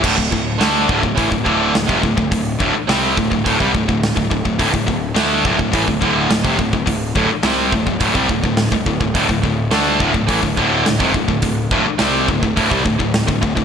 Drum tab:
CC |x---------------|----------------|----------------|----------------|
HH |----o---o---o---|o---o---o---o---|o---o---o---o---|o---o---o---o---|
SD |----o-------o---|----o-------o---|----o-------o---|----o-------o---|
BD |ooo---ooooo--ooo|o-o---oooooo-ooo|ooo---ooooo--ooo|o-o---oooooo-ooo|

CC |----------------|----------------|
HH |o---o---o---o---|o---o---o---o---|
SD |----o-------o---|----o-------o---|
BD |ooo---ooooo--ooo|o-o---oooooo-ooo|